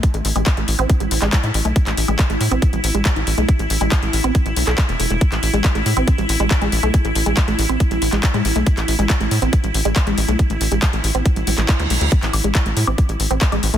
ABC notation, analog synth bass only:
X:1
M:4/4
L:1/16
Q:1/4=139
K:C
V:1 name="Analog synth bass" clef=bass
z A,,, A,,, A,,, z A,,, A,,, A,,, z A,,, A,,, A,,, z A,, A,,, B,,, | z A,,, A,,, A,,, z A,,, A,, A,,, z A,,, A,,, A,,, z A,,, A,,, B,,, | z A,,, A,,, A,,, z A,,, A,,, A,,, z A,,, B,,, B,,, z E,,, E,,, E,,, | z A,,, A,,, A,,, z A,,, A,, A,,, z A,,, A,,, A,,, z A,,, A,,, B,,, |
z A,,, A,,, A,,, z A,,, A,,, A,,, z A,,, A,,, A,,, z A,, A,,, B,,, | z A,,, A,,, A,,, z A,,, A,, A,,, z A,,, A,,, A,,, z A,,, A,,, B,,, | z A,,, A,,, A,,, z A,,, A,,, A,,, z A,,, A,,, A,,, z D,, B,,, D,, | z A,,, A,,, A,,, z A,,, A,, A,,, z A,,, A,,, A,,, z A,,, A,,, B,,, |]